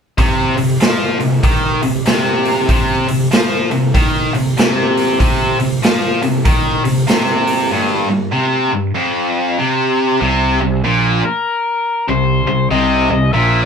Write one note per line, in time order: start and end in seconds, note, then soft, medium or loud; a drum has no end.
0.18 0.56 C3 medium
0.18 kick medium
0.18 open hi-hat medium
0.57 0.76 C3 medium
0.57 open hi-hat soft
0.81 1.19 F3 medium
0.81 snare loud
0.81 open hi-hat medium
1.20 1.39 C3 medium
1.20 open hi-hat soft
1.44 1.82 D#3 medium
1.44 kick medium
1.44 open hi-hat medium
1.83 2.02 C3 medium
1.83 open hi-hat soft
2.06 2.68 C3 medium
2.06 snare medium
2.06 open hi-hat medium
2.45 open hi-hat soft
2.69 3.07 C3 medium
2.69 kick medium
2.69 open hi-hat medium
3.08 3.27 C3 medium
3.08 open hi-hat soft
3.32 3.70 F3 medium
3.32 snare loud
3.32 open hi-hat medium
3.71 3.90 C3 medium
3.71 open hi-hat soft
3.94 4.33 D#3 medium
3.94 kick medium
3.94 open hi-hat medium
4.34 4.53 C3 medium
4.34 open hi-hat soft
4.58 5.19 C3 medium
4.58 snare medium
4.58 open hi-hat medium
4.97 open hi-hat soft
5.20 5.58 C3 medium
5.20 kick medium
5.20 open hi-hat medium
5.60 5.78 C3 medium
5.60 open hi-hat soft
5.83 6.21 F3 medium
5.83 snare loud
5.83 open hi-hat medium
6.22 6.41 C3 medium
6.22 open hi-hat soft
6.45 6.84 D#3 medium
6.45 kick medium
6.45 open hi-hat medium
6.84 7.04 C3 medium
6.84 open hi-hat soft
7.07 7.70 C3 medium
7.07 snare medium
7.07 open hi-hat medium
7.47 open hi-hat soft
7.71 8.09 G2 medium
8.10 8.29 G2 medium
8.33 8.71 C3 medium
8.72 8.91 G2 medium
8.95 9.58 F2 medium
9.59 10.19 C3 medium
10.21 10.58 C2 medium
10.21 10.59 C3 medium
10.61 10.83 C2 medium
10.61 10.79 C3 medium
10.84 11.21 A#1 medium
10.84 11.22 A#2 medium
11.25 12.09 A#4 medium
12.08 12.45 C2 medium
12.08 12.40 C3 medium
12.08 12.71 C5 medium
12.47 12.69 C2 medium
12.47 12.66 C3 medium
12.71 13.07 C2 medium
12.71 13.09 C3 medium
12.71 13.09 D#5 medium
13.10 13.32 C2 medium
13.10 13.29 C3 medium
13.10 13.33 D#5 loud
13.33 13.65 A#1 medium
13.33 13.65 A#2 medium
13.33 13.63 E5 medium